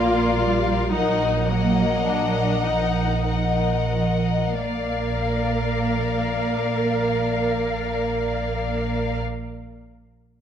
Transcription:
0.00 0.74 A#1 soft
0.00 0.40 A#3 medium
0.00 0.93 F4 medium
0.00 0.90 A#4 soft
0.00 0.91 D5 soft
0.00 0.91 F5 soft
0.41 0.92 G3 soft
0.92 2.44 A#1 soft
0.92 2.65 F#3 soft
0.92 1.47 D#4 soft
0.92 1.45 A#4 soft
0.92 1.45 D#5 soft
0.92 1.47 F#5 soft
1.46 2.05 A#3 soft
1.46 3.24 A#4 soft
1.46 3.24 D#5 soft
1.46 3.25 F#5 soft
2.05 2.64 D4 soft
2.65 4.39 A#1 soft
2.65 4.58 F3 soft
2.65 3.61 D#4 soft
3.27 4.59 A#4 soft
3.27 4.59 D#5 soft
3.27 4.58 F#5 soft
4.61 9.19 A#1 soft
4.61 9.19 A#3 soft
4.61 9.19 A#4 soft
4.61 9.19 D5 soft
4.61 9.19 F5 soft

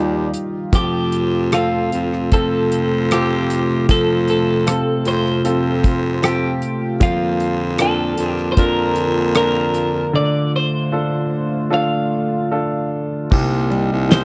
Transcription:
0.00 0.29 D#2 medium
0.00 0.68 D#3 medium
0.00 0.69 D#3 medium
0.00 0.68 G3 medium
0.00 0.74 D#4 soft
0.00 0.75 F4 soft
0.00 6.96 F4 medium
0.00 0.75 G4 soft
0.00 0.30 D5 medium
0.34 closed hi-hat medium
0.72 1.88 F2 medium
0.72 6.97 C3 medium
0.72 3.85 F3 medium
0.72 6.96 A3 medium
0.72 1.56 G4 medium
0.72 kick loud
0.72 closed hi-hat medium
1.12 closed hi-hat medium
1.52 2.29 C4 soft
1.52 2.30 F4 soft
1.52 2.29 F4 medium
1.52 2.30 A4 medium
1.52 cross-stick medium
1.52 closed hi-hat medium
1.92 2.29 F2 medium
1.92 closed hi-hat medium
2.13 cross-stick soft
2.32 3.85 F2 loud
2.32 3.09 C4 soft
2.32 3.09 F4 soft
2.32 3.09 A4 medium
2.32 3.12 A4 medium
2.32 kick medium
2.32 closed hi-hat medium
2.72 closed hi-hat medium
3.11 3.87 C4 soft
3.11 3.87 F4 soft
3.11 3.90 G4 medium
3.11 3.87 A4 medium
3.11 cross-stick medium
3.11 closed hi-hat medium
3.50 closed hi-hat medium
3.89 4.75 F2 medium
3.89 6.97 F3 medium
3.89 4.29 A4 medium
3.89 kick loud
3.89 closed hi-hat medium
4.28 5.08 A4 medium
4.28 closed hi-hat medium
4.67 5.42 C4 soft
4.67 5.42 F4 soft
4.67 5.43 A4 medium
4.67 cross-stick loud
4.67 closed hi-hat medium
5.05 5.42 F2 medium
5.05 6.27 C5 medium
5.05 closed hi-hat medium
5.26 cross-stick soft
5.44 6.58 F2 loud
5.44 6.20 C4 soft
5.44 6.20 F4 soft
5.44 6.21 A4 medium
5.44 closed hi-hat medium
5.84 kick medium
5.84 closed hi-hat medium
6.22 6.98 C4 soft
6.22 6.98 F4 soft
6.22 7.02 G4 medium
6.22 6.99 A4 medium
6.22 cross-stick loud
6.22 closed hi-hat medium
6.62 closed hi-hat medium
7.00 8.14 F2 medium
7.00 13.28 D3 medium
7.00 10.09 F3 medium
7.00 10.11 F4 medium
7.00 7.82 F4 medium
7.00 kick loud
7.00 closed hi-hat medium
7.40 closed hi-hat medium
7.78 8.55 A#3 medium
7.78 8.55 D4 soft
7.78 8.55 F4 soft
7.78 8.30 A4 medium
7.78 cross-stick loud
7.78 closed hi-hat medium
8.17 8.54 F2 medium
8.17 closed hi-hat medium
8.30 8.48 G4 medium
8.38 cross-stick soft
8.52 8.58 C5 medium
8.57 10.10 F2 loud
8.57 9.33 D4 soft
8.57 9.33 F4 soft
8.57 9.33 A#4 medium
8.57 9.36 A#4 medium
8.57 kick medium
8.57 closed hi-hat medium
8.96 closed hi-hat medium
9.35 10.11 D4 soft
9.35 10.11 F4 soft
9.35 10.12 A#4 medium
9.35 10.15 A#4 medium
9.35 cross-stick loud
9.35 closed hi-hat medium
9.74 closed hi-hat medium
10.13 13.27 D3 medium
10.13 13.29 A3 medium
10.13 13.29 F4 medium
10.13 10.51 D5 loud
10.56 11.69 C5 loud
10.92 11.69 D4 soft
10.92 11.69 F4 soft
10.92 11.69 A4 medium
11.70 12.48 D4 medium
11.70 12.49 F4 soft
11.70 12.48 A4 medium
11.70 12.89 F5 medium
12.51 13.29 D4 soft
12.51 13.29 F4 soft
12.51 13.29 A4 medium
13.31 13.87 C2 medium
13.31 14.24 C3 medium
13.31 14.24 A#3 medium
13.31 14.24 D#4 medium
13.31 kick loud
13.31 crash medium
13.70 14.24 G3 medium
13.70 ride medium
13.92 14.24 C2 loud
14.09 14.24 D#4 medium
14.09 14.24 C5 medium
14.09 snare loud
14.09 ride medium

